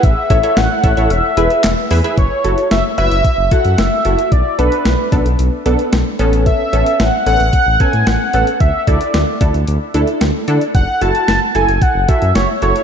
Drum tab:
HH |x-xxx-xxx-xxx-ox|x-xxx-xxx-xxx-xx|x-xxx-xxx-xxx-xx|x-xxx-xxx-xxx-xx|
CP |------------x---|----------------|----------------|----------------|
SD |----o-------o---|----o-------o---|----o-------o---|----o-------o---|
BD |o-o---o---------|o-------o-o-----|o-----o---------|o-------o-o-----|

HH |x-xxx-xxx-xxx-xx|x-xxx-xxx-xxx-xx|
CP |----------------|----------------|
SD |----o-------o---|----o-------o---|
BD |o-o---o---------|o-------o-o-----|